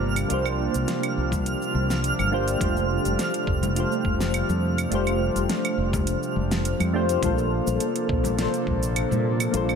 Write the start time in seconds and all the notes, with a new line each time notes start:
Already playing: G1 C3 F3 G3 A#3 D4 F4 G4 C5 F6
0.16 closed hi-hat, claves, shaker
0.28 C2 A#3 D4 F4, closed hi-hat, high conga, shaker
0.32 G4 C5
0.46 claves, shaker
0.74 C2, closed hi-hat, high conga, shaker
0.88 snare, closed hi-hat, shaker
1.03 closed hi-hat, claves, shaker
1.18 C2
1.32 kick, closed hi-hat, high conga, low conga, shaker
1.46 closed hi-hat, shaker
1.62 shaker
1.74 C2, high conga
1.90 snare, shaker
2.04 closed hi-hat, shaker
2.19 G1, high conga, claves, shaker
2.31 A#3 D4 F4 G4 C5
2.48 closed hi-hat, shaker
2.58 F1 G3 A3 D4 F4, kick, closed hi-hat, high conga, shaker
2.63 G4 C5
2.77 shaker
3.05 F1, closed hi-hat, high conga, shaker
3.19 snare, closed hi-hat, shaker
3.34 closed hi-hat, shaker
3.47 F1, kick
3.63 closed hi-hat, high conga, low conga, shaker
3.74 A3 D4 F4, closed hi-hat, shaker
3.78 G4 C5
3.92 shaker
4.05 F1, kick, high conga
4.21 snare, shaker
4.34 closed hi-hat, claves, shaker
4.49 F2, high conga, shaker
4.78 closed hi-hat, claves, shaker
4.89 F1 A3 D4 F4, closed hi-hat, high conga, shaker
4.94 G4 C5
5.07 closed hi-hat, claves, shaker
5.35 F1, closed hi-hat, high conga, shaker
5.50 snare, closed hi-hat, shaker
5.65 closed hi-hat, claves, shaker
5.78 F1
5.93 kick, closed hi-hat, high conga, low conga, shaker
6.07 closed hi-hat, shaker
6.23 shaker
6.36 F1, high conga
6.51 snare, closed hi-hat, shaker
6.65 closed hi-hat, shaker
6.80 F2, closed hi-hat, high conga, claves, shaker
6.93 A3 D4 F4 G4 C5
7.09 closed hi-hat, shaker
7.21 A#1 C3 F3 A#3 D4 F4 A4, kick, closed hi-hat, high conga, shaker
7.25 A4 C5
7.38 shaker
7.67 A#1, high conga, shaker
7.80 closed hi-hat, shaker
7.96 closed hi-hat, shaker
8.09 A#1, kick
8.24 closed hi-hat, high conga, low conga, shaker
8.36 A#3 D4 F4, snare, closed hi-hat, shaker
8.41 A4 C5
8.54 closed hi-hat, shaker
8.67 A#1, kick, high conga
8.83 closed hi-hat, shaker
8.96 closed hi-hat, claves, shaker
9.11 A#2, high conga, shaker
9.40 closed hi-hat, claves, shaker
9.51 A#1 A#3 D4 F4, closed hi-hat, high conga, shaker
9.55 A4 C5
9.69 claves, shaker